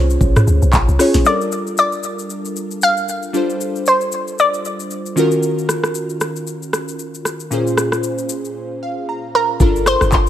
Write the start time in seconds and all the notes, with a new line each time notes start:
Already playing: C2 C#4 F4 G#4 C5 C#5
0.10 shaker
0.21 A#1, kick, shaker
0.36 cross-stick, mid tom, shaker
0.47 D2, shaker
0.62 C2, shaker
0.73 A#1, kick, clap, shaker
0.88 C2, shaker
0.99 C#4 F4 G#4 C#5, cross-stick, open hi-hat, shaker
1.14 A#1, snare, shaker
1.24 G3 D4 F4 A4 A#4 D5, shaker
1.41 shaker
1.52 shaker
1.67 shaker
1.77 D5, shaker
1.92 shaker
2.03 shaker
2.19 shaker
2.30 shaker
2.45 shaker
2.56 shaker
2.71 shaker
2.82 F5, shaker
2.97 shaker
3.08 shaker
3.23 shaker
3.33 G3 D4 F4 A4 C5, shaker
3.50 shaker
3.61 shaker
3.76 shaker
3.86 C5, shaker
4.01 shaker
4.12 shaker
4.28 shaker
4.38 D5, shaker
4.54 shaker
4.65 shaker
4.80 shaker
4.91 shaker
5.06 shaker
5.16 D#3 C#4 F4 F#4 A#4, shaker
5.31 shaker
5.43 shaker
5.58 shaker
5.69 cross-stick, shaker
5.84 cross-stick, shaker
5.95 shaker
6.09 shaker
6.21 cross-stick, shaker
6.36 shaker
6.47 shaker
6.62 shaker
6.73 cross-stick, shaker
6.88 shaker
6.99 shaker
7.14 shaker
7.25 cross-stick, shaker
7.40 shaker
7.50 A#2 C#4 F4 G#4 C5, shaker
7.67 shaker
7.77 cross-stick, shaker
7.92 cross-stick, shaker
8.03 shaker
8.18 shaker
8.29 shaker
8.45 shaker
8.83 F5
9.09 A#5
9.35 A#4
9.60 G1 D4 F4 A4 A#4, kick, shaker
9.76 shaker
9.86 C5, cross-stick, shaker
10.01 G1, cross-stick, shaker
10.12 kick, clap, shaker